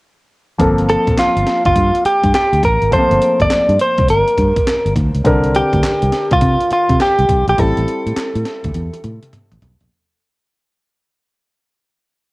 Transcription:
0.58 fingered electric bass G1, grand piano F3 A#3 C4 A4, kick, closed hi-hat
0.78 closed hi-hat
0.89 clean electric guitar A4, closed hi-hat
1.07 fingered electric bass A#1, kick, closed hi-hat
1.18 clean electric guitar F4, muted fingered electric bass stroke, snare, clap, closed hi-hat
1.36 fingered electric bass G1, closed hi-hat
1.47 snare, closed hi-hat
1.65 fingered electric bass G1, clean electric guitar F4, kick, closed hi-hat
1.76 fingered electric bass G2, kick, closed hi-hat
1.95 closed hi-hat
2.05 clean electric guitar G4, muted fingered electric bass stroke, closed hi-hat
2.24 fingered electric bass G2, kick, closed hi-hat
2.34 clean electric guitar G4, snare, clap, closed hi-hat
2.53 fingered electric bass D2, closed hi-hat
2.63 fingered electric bass A1, clean electric guitar A#4, kick, closed hi-hat
2.82 fingered electric bass G#1, closed hi-hat
2.91 grand piano F3 A3 C4 A5, clean electric guitar C5, kick, closed hi-hat
2.99 grand piano A#3
3.11 fingered electric bass G1, closed hi-hat
3.22 closed hi-hat
3.40 fingered electric bass G1, clean electric guitar D5, kick, closed hi-hat
3.50 muted fingered electric bass stroke, snare, clap, closed hi-hat
3.69 fingered electric bass G2, closed hi-hat
3.79 clean electric guitar C5, closed hi-hat
3.98 fingered electric bass C2, kick, closed hi-hat
4.08 fingered electric bass G1, clean electric guitar A#4, closed hi-hat
4.28 closed hi-hat
4.38 fingered electric bass G2, kick, closed hi-hat
4.57 kick, closed hi-hat
4.67 snare, clap, closed hi-hat
4.86 fingered electric bass G1, closed hi-hat
4.96 fingered electric bass D2, kick, closed hi-hat
5.15 fingered electric bass C#2, closed hi-hat
5.24 fingered electric bass C2, grand piano D3 C4 D4 A#4, kick, closed hi-hat
5.44 closed hi-hat
5.55 clean electric guitar G4, closed hi-hat
5.73 fingered electric bass D2, kick, closed hi-hat
5.83 muted fingered electric bass stroke, snare, clap, closed hi-hat
6.02 fingered electric bass C2, closed hi-hat
6.12 snare, closed hi-hat
6.31 fingered electric bass C2, clean electric guitar F4, kick, closed hi-hat
6.41 fingered electric bass C3, kick, closed hi-hat
6.61 closed hi-hat
6.71 clean electric guitar F4, muted fingered electric bass stroke, closed hi-hat
6.89 fingered electric bass C3, kick, closed hi-hat
7.00 clean electric guitar G4, snare, clap, closed hi-hat
7.19 fingered electric bass C2, closed hi-hat
7.29 fingered electric bass B1, kick, closed hi-hat
7.47 fingered electric bass A#1, clean electric guitar G4, closed hi-hat
7.57 fingered electric bass A1, grand piano G3 C4 E4 A4, clean electric guitar A4, kick, closed hi-hat
7.77 fingered electric bass A1, closed hi-hat
7.88 closed hi-hat
8.06 fingered electric bass A2, closed hi-hat
8.16 muted fingered electric bass stroke, snare, clap, closed hi-hat
8.35 fingered electric bass A2, closed hi-hat
8.45 snare, closed hi-hat
8.64 fingered electric bass D2, kick, closed hi-hat
8.74 fingered electric bass E2, closed hi-hat, high tom
8.93 closed hi-hat, high tom
9.04 fingered electric bass A2, closed hi-hat, mid tom
9.23 closed hi-hat, mid tom
9.33 closed hi-hat, mid tom
9.52 fingered electric bass A1, closed hi-hat, mid tom
9.62 fingered electric bass B1, closed hi-hat, floor tom
9.81 fingered electric bass A#1, closed hi-hat, floor tom

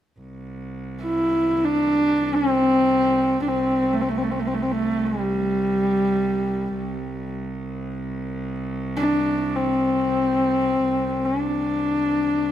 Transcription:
0.20 cello C2
1.03 horsehead fiddle E4
1.64 horsehead fiddle D4
2.34 horsehead fiddle C4
3.42 horsehead fiddle D4
3.48 horsehead fiddle C4
3.93 horsehead fiddle A3
4.01 horsehead fiddle C4
4.09 horsehead fiddle A3
4.18 horsehead fiddle C4
4.23 horsehead fiddle A3
4.31 horsehead fiddle C4
4.39 horsehead fiddle A3
4.47 horsehead fiddle C4
4.54 horsehead fiddle A3
4.62 horsehead fiddle C4
4.71 horsehead fiddle A3
5.05 horsehead fiddle G3
6.78 cello C2
8.97 horsehead fiddle D4
9.55 horsehead fiddle C4
11.25 horsehead fiddle D4

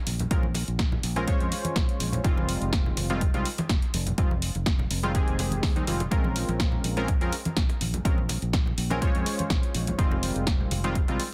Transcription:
0.06 fingered electric bass A#1, open hi-hat, high conga
0.20 closed hi-hat, low conga
0.31 fingered electric bass A#1, synth keys G#3 C4 C#4 F4 A#4, kick, closed hi-hat, muted conga
0.43 high conga
0.54 open hi-hat, muted conga
0.68 fingered electric bass A#1, closed hi-hat
0.79 kick, snare, closed hi-hat
0.92 muted conga, low conga
1.03 fingered electric bass A#1, open hi-hat
1.16 synth keys G#3 C4 C#4 F4 A#4, closed hi-hat, muted conga
1.27 synth keys G#3 C#4 F4 C5 C#5, kick, closed hi-hat
1.40 fingered electric bass F2, closed hi-hat
1.52 open hi-hat, muted conga
1.65 closed hi-hat, high conga
1.76 fingered electric bass A#1, kick, snare, closed hi-hat, muted conga
1.89 closed hi-hat
2.00 fingered electric bass A#1, open hi-hat, high conga
2.13 closed hi-hat, muted conga, low conga
2.24 fingered electric bass F1, synth keys D#3 G3 G#3 C4 F4, kick, closed hi-hat
2.37 muted conga, high conga
2.49 open hi-hat
2.62 fingered electric bass F1, closed hi-hat
2.73 kick, snare, closed hi-hat, muted conga
2.86 low conga
2.97 fingered electric bass F1, open hi-hat, muted conga
3.10 synth keys D#3 G3 G#3 C4 F4, closed hi-hat
3.21 kick, closed hi-hat
3.34 fingered electric bass C2, synth keys D#3 G3 G#3 C4 F4, closed hi-hat, muted conga
3.45 open hi-hat
3.58 closed hi-hat, muted conga, high conga
3.69 fingered electric bass F1, kick, snare, closed hi-hat
3.82 closed hi-hat
3.94 fingered electric bass F1, open hi-hat, muted conga, high conga
4.06 closed hi-hat, low conga
4.18 fingered electric bass F1, synth keys D#3 G3 G#3 C4 F4, kick, closed hi-hat, muted conga
4.31 high conga
4.42 open hi-hat
4.55 fingered electric bass F1, closed hi-hat, muted conga
4.66 kick, snare, closed hi-hat
4.79 muted conga, low conga
4.91 fingered electric bass F1, open hi-hat
5.03 synth keys D#3 G3 G#3 C4 F4, closed hi-hat
5.14 synth keys D#3 G#3 C4 G4 G#4, kick, closed hi-hat, muted conga
5.28 fingered electric bass F1, closed hi-hat
5.39 open hi-hat, muted conga
5.51 closed hi-hat, high conga
5.63 fingered electric bass D#2, kick, snare, open hi-hat
5.76 synth keys D#3 G3 G#3 C4 D#4, closed hi-hat, muted conga
5.87 fingered electric bass F1, synth keys D#3 G3 G#3 C4 F4, open hi-hat, high conga
6.00 closed hi-hat, muted conga, low conga
6.11 fingered electric bass A#1, synth keys G#3 C4 C#4 F4 A#4, kick, closed hi-hat
6.24 muted conga, high conga
6.36 open hi-hat
6.49 fingered electric bass A#1, closed hi-hat, muted conga
6.60 kick, snare, closed hi-hat
6.72 low conga
6.84 fingered electric bass A#1, open hi-hat, muted conga
6.97 synth keys G#3 C4 C#4 F4 A#4, closed hi-hat
7.08 kick, closed hi-hat, muted conga
7.21 fingered electric bass F2, synth keys G#3 C4 C#4 F4 A#4, closed hi-hat
7.33 open hi-hat
7.45 closed hi-hat, muted conga, high conga
7.57 fingered electric bass A#1, kick, snare, closed hi-hat
7.69 closed hi-hat, muted conga
7.81 fingered electric bass A#1, open hi-hat, high conga
7.94 closed hi-hat, low conga
8.05 fingered electric bass A#1, synth keys G#3 C4 C#4 F4 A#4, kick, closed hi-hat, muted conga
8.18 high conga
8.29 open hi-hat, muted conga
8.42 fingered electric bass A#1, closed hi-hat
8.53 kick, snare, closed hi-hat
8.66 muted conga, low conga
8.78 fingered electric bass A#1, open hi-hat
8.90 synth keys G#3 C4 C#4 F4 A#4, closed hi-hat, muted conga
9.01 synth keys G#3 C#4 F4 C5 C#5, kick, closed hi-hat
9.15 fingered electric bass F2, closed hi-hat
9.26 open hi-hat, muted conga
9.39 closed hi-hat, high conga
9.50 fingered electric bass A#1, kick, snare, closed hi-hat, muted conga
9.63 closed hi-hat
9.74 fingered electric bass A#1, open hi-hat, high conga
9.87 closed hi-hat, muted conga, low conga
9.98 fingered electric bass F1, synth keys D#3 G3 G#3 C4 F4, kick, closed hi-hat
10.11 muted conga, high conga
10.23 open hi-hat
10.36 fingered electric bass F1, closed hi-hat
10.47 kick, snare, closed hi-hat, muted conga
10.61 low conga
10.71 fingered electric bass F1, open hi-hat, muted conga
10.84 synth keys D#3 G3 G#3 C4 F4, closed hi-hat
10.95 kick, closed hi-hat
11.08 fingered electric bass C2, synth keys D#3 G3 G#3 C4 F4, closed hi-hat, muted conga
11.20 open hi-hat

